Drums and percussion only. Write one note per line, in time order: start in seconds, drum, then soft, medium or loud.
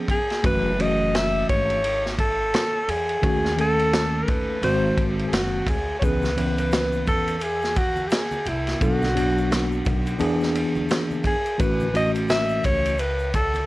0.08 kick medium
0.08 ride medium
0.30 snare soft
0.30 ride soft
0.44 kick loud
0.44 ride medium
0.80 ride medium
1.15 snare loud
1.15 hi-hat pedal soft
1.15 ride medium
1.49 kick medium
1.49 ride medium
1.70 ride soft
1.84 ride medium
2.06 snare soft
2.19 kick medium
2.19 ride medium
2.54 snare loud
2.54 hi-hat pedal soft
2.54 ride medium
2.89 ride medium
3.09 ride soft
3.23 kick loud
3.23 ride medium
3.45 snare soft
3.58 ride medium
3.79 ride soft
3.93 snare loud
3.93 hi-hat pedal soft
3.93 ride medium
4.28 kick loud
4.28 ride medium
4.63 ride medium
4.97 kick medium
4.97 ride medium
5.19 ride soft
5.33 snare loud
5.33 hi-hat pedal soft
5.33 ride medium
5.67 kick medium
5.67 ride medium
6.02 kick loud
6.02 ride medium
6.02 shaker medium
6.22 snare soft
6.22 high conga medium
6.22 shaker soft
6.38 ride medium
6.38 low conga medium
6.38 shaker soft
6.58 ride soft
6.58 shaker medium
6.71 snare loud
6.71 hi-hat pedal medium
6.71 ride medium
6.71 high conga soft
6.71 shaker medium
6.92 shaker soft
7.07 kick medium
7.07 ride medium
7.07 low conga medium
7.07 shaker soft
7.28 ride soft
7.28 shaker soft
7.40 ride medium
7.40 shaker medium
7.62 snare soft
7.62 shaker soft
7.75 kick medium
7.75 ride medium
7.75 shaker soft
7.96 high conga medium
7.96 shaker soft
8.10 snare loud
8.10 hi-hat pedal medium
8.10 ride medium
8.10 shaker medium
8.31 high conga medium
8.31 shaker soft
8.46 ride medium
8.46 low conga medium
8.46 shaker soft
8.67 snare soft
8.67 ride soft
8.67 shaker soft
8.81 kick loud
8.81 ride medium
8.81 shaker medium
9.02 snare soft
9.02 high conga medium
9.02 shaker soft
9.17 ride medium
9.17 low conga medium
9.17 shaker medium
9.38 shaker medium
9.51 snare medium
9.51 hi-hat pedal medium
9.51 ride medium
9.51 high conga soft
9.51 shaker medium
9.72 shaker soft
9.85 kick loud
9.85 ride medium
9.85 low conga medium
9.85 shaker soft
10.06 ride soft
10.06 shaker soft
10.19 ride medium
10.19 shaker soft
10.41 snare soft
10.41 shaker soft
10.55 ride medium
10.55 shaker soft
10.75 high conga medium
10.75 shaker soft
10.89 snare loud
10.89 hi-hat pedal soft
10.89 ride medium
10.89 shaker medium
11.11 high conga medium
11.11 shaker soft
11.23 kick medium
11.23 ride medium
11.23 low conga medium
11.23 shaker soft
11.45 ride soft
11.45 shaker soft
11.59 kick loud
11.59 ride medium
11.59 shaker medium
11.80 high conga medium
11.80 shaker soft
11.95 ride medium
11.95 low conga medium
11.95 shaker soft
12.15 ride soft
12.15 shaker soft
12.29 snare loud
12.29 hi-hat pedal soft
12.29 ride medium
12.29 high conga soft
12.29 shaker medium
12.49 shaker soft
12.64 kick medium
12.64 ride medium
12.64 low conga medium
12.64 shaker soft
12.85 ride soft
12.85 shaker soft
12.98 ride medium
12.98 shaker medium
13.19 shaker soft
13.34 kick medium
13.34 ride medium
13.34 shaker soft
13.54 ride soft
13.54 high conga medium
13.54 shaker soft